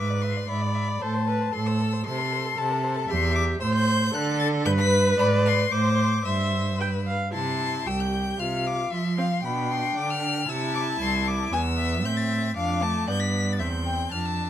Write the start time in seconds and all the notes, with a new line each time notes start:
Already playing: G#2 B4 E5 D6
0.10 D5
0.22 E5 C6
0.37 D5
0.48 G#2 D5 E5 B5
0.62 D5
0.75 E5
0.88 D5
1.01 A2 A4 C5 A5
1.15 C5
1.28 A4 B4
1.41 C5
1.53 A2 A4 C6
1.67 C5 E6
1.81 A4
1.93 C5
2.06 C3 A4 C5 C6
2.19 A4
2.33 C5
2.46 A4
2.58 C3 C5 A5
2.71 A4
2.84 C5
2.96 A4
3.10 E2 G4 E5 C6
3.35 D6
3.61 A2 C5 E6
3.74 G6
4.14 D3 A4 F#6
4.39 A6
4.65 G2 B4 G6
4.79 B6
5.18 G#2 D5 B5
5.46 C6
5.71 A2 C5 D6
6.25 G2 C5 E5 E6
6.79 B4 G5
7.07 F5
7.33 C3 E4 A5 C6
7.86 C2 G4 G5 E6
8.00 G6
8.39 C3 F4 F5 F6
8.67 D6
8.91 F3 F4 E5 C6
9.18 C4 F5
9.43 B2 D4 G5 B5
9.71 C6
9.96 D3 D6
10.10 F6
10.48 C3 E4 A5 E6
10.75 D6
11.01 C2 C6
11.27 D6
11.52 E2 B3 G#5 E6
11.78 E5
12.04 A2 C4 E5 G6
12.17 A6
12.56 F2 D4 F5 D6
12.82 A3 A5
13.08 G2 B3 D5 G6
13.20 B6
13.53 A6
13.59 E2 C4 E5 G6
13.86 G5
14.12 F2 D4 A5 F6
14.25 E6